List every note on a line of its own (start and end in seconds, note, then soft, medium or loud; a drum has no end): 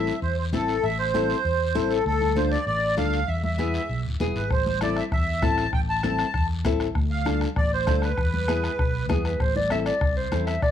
0.00 0.10 A1 medium
0.00 0.13 C4 medium
0.00 0.13 E4 medium
0.00 0.13 A4 medium
0.00 0.19 E5 medium
0.07 short guiro medium
0.22 0.53 E2 medium
0.22 0.36 C5 medium
0.22 long guiro medium
0.38 0.45 C5 medium
0.53 0.77 A1 medium
0.53 0.74 C4 medium
0.53 0.74 E4 medium
0.53 0.75 A4 medium
0.53 0.85 A4 medium
0.53 high conga medium
0.53 short guiro medium
0.68 short guiro medium
0.83 1.33 A1 medium
0.83 0.98 E5 loud
0.83 long guiro medium
0.99 1.93 C5 loud
1.14 1.35 C4 medium
1.14 1.36 E4 medium
1.14 1.36 A4 medium
1.14 high conga medium
1.14 short guiro medium
1.30 short guiro medium
1.45 1.75 E2 medium
1.45 long guiro medium
1.75 2.00 A1 medium
1.75 1.96 C4 medium
1.75 1.97 E4 medium
1.75 1.97 A4 medium
1.75 high conga medium
1.75 short guiro medium
1.90 2.04 A4 medium
1.90 short guiro medium
2.06 2.55 D2 medium
2.06 2.37 A4 loud
2.06 long guiro medium
2.21 high conga medium
2.36 2.58 D4 medium
2.36 2.58 F4 medium
2.36 2.58 A4 medium
2.36 2.51 C5 medium
2.36 high conga medium
2.36 short guiro medium
2.51 2.65 D5 loud
2.51 short guiro medium
2.66 2.97 A1 medium
2.66 2.95 D5 loud
2.66 long guiro medium
2.97 3.22 D2 medium
2.97 3.19 D4 medium
2.97 3.19 F4 medium
2.97 3.19 A4 medium
2.97 3.29 F5 loud
2.97 high conga medium
2.97 short guiro medium
3.13 short guiro medium
3.28 3.77 E2 loud
3.28 3.42 E5 loud
3.28 long guiro medium
3.43 4.01 E5 medium
3.43 high conga medium
3.58 3.80 B3 medium
3.58 3.80 E4 medium
3.58 3.80 G#4 medium
3.58 high conga medium
3.58 short guiro medium
3.74 short guiro medium
3.89 4.04 B1 medium
3.89 long guiro medium
4.05 4.19 D1 medium
4.20 4.34 E1 medium
4.20 4.41 B3 medium
4.20 4.42 E4 medium
4.20 4.42 G#4 medium
4.20 high conga medium
4.20 short guiro medium
4.35 4.49 G#1 medium
4.35 4.50 B4 medium
4.35 short guiro medium
4.51 5.00 A1 medium
4.51 4.80 C5 medium
4.51 bombo low medium
4.51 bombo rim medium
4.51 long guiro medium
4.66 high conga medium
4.81 5.03 C4 medium
4.81 5.03 E4 medium
4.81 5.03 A4 medium
4.81 4.97 D5 medium
4.81 bombo rim medium
4.81 high conga medium
4.81 short guiro medium
4.96 5.04 E5 medium
4.96 bombo rim medium
4.96 short guiro medium
5.12 5.44 E2 medium
5.12 5.44 E5 loud
5.12 bombo low medium
5.12 bombo rim medium
5.12 long guiro medium
5.42 5.67 A1 medium
5.42 5.64 C4 medium
5.42 5.64 E4 medium
5.42 5.64 A4 medium
5.42 5.71 A5 loud
5.42 bombo low medium
5.42 bombo rim medium
5.42 high conga medium
5.42 short guiro medium
5.58 bombo rim medium
5.58 short guiro medium
5.73 6.22 A1 loud
5.73 5.80 G5 loud
5.73 bombo low medium
5.73 bombo rim medium
5.73 long guiro medium
5.89 6.46 A5 medium
6.03 6.25 C4 medium
6.03 6.25 E4 medium
6.03 6.25 A4 medium
6.03 bombo rim medium
6.03 high conga medium
6.03 short guiro medium
6.18 bombo rim medium
6.18 short guiro medium
6.34 6.65 E2 medium
6.34 bombo low medium
6.34 bombo rim medium
6.34 long guiro medium
6.65 6.89 A1 medium
6.65 6.86 C4 medium
6.65 6.87 E4 medium
6.65 6.87 A4 loud
6.65 bombo low medium
6.65 bombo rim medium
6.65 high conga medium
6.65 short guiro medium
6.80 bombo rim medium
6.80 short guiro medium
6.95 7.44 D2 loud
6.95 bombo low medium
6.95 bombo rim medium
6.95 long guiro medium
7.11 7.39 F5 medium
7.25 7.47 D4 medium
7.25 7.47 F4 medium
7.25 7.48 A4 medium
7.25 bombo rim medium
7.25 high conga medium
7.25 short guiro medium
7.41 bombo rim medium
7.41 short guiro medium
7.56 7.87 A1 medium
7.56 7.71 D5 medium
7.56 bombo low medium
7.56 bombo rim medium
7.56 long guiro medium
7.73 8.01 C5 loud
7.87 8.12 D2 medium
7.87 8.08 D4 medium
7.87 8.08 F4 medium
7.87 8.09 A4 medium
7.87 bombo low medium
7.87 bombo rim medium
7.87 high conga medium
7.87 short guiro medium
8.02 9.06 B4 medium
8.02 bombo rim medium
8.02 short guiro medium
8.17 8.67 E2 loud
8.17 bombo low medium
8.17 bombo rim medium
8.17 long guiro medium
8.34 high conga medium
8.48 8.70 B3 medium
8.48 8.70 E4 medium
8.48 8.70 G#4 medium
8.48 bombo rim medium
8.48 high conga medium
8.48 short guiro medium
8.64 bombo rim medium
8.64 short guiro medium
8.79 9.10 B1 medium
8.79 bombo low medium
8.79 bombo rim medium
8.79 long guiro medium
9.09 9.34 E2 medium
9.09 9.31 B3 medium
9.09 9.31 E4 medium
9.09 9.31 G#4 medium
9.09 9.24 G#4 medium
9.09 bombo low medium
9.09 bombo rim medium
9.09 high conga medium
9.09 short guiro medium
9.25 9.42 B4 medium
9.25 bombo rim medium
9.25 short guiro medium
9.40 9.89 A1 medium
9.40 9.55 C5 loud
9.40 bombo low medium
9.40 bombo rim medium
9.40 long guiro medium
9.56 9.70 D5 medium
9.56 high conga medium
9.70 9.92 C4 medium
9.70 9.92 E4 medium
9.70 9.93 A4 medium
9.70 9.78 E5 medium
9.70 bombo rim medium
9.70 high conga medium
9.70 short guiro medium
9.86 10.15 D5 medium
9.86 bombo rim medium
9.86 short guiro medium
10.01 10.26 C2 medium
10.01 bombo low medium
10.01 bombo rim medium
10.01 long guiro medium
10.17 10.45 C5 medium
10.32 10.57 E2 medium
10.32 10.53 C4 medium
10.32 10.53 E4 medium
10.32 10.54 A4 medium
10.32 bombo rim medium
10.32 high conga medium
10.32 short guiro medium
10.47 10.61 E5 medium
10.47 bombo rim medium
10.47 short guiro medium
10.62 10.71 E1 medium
10.62 10.71 D5 loud
10.62 bombo low medium
10.62 bombo rim medium
10.62 long guiro medium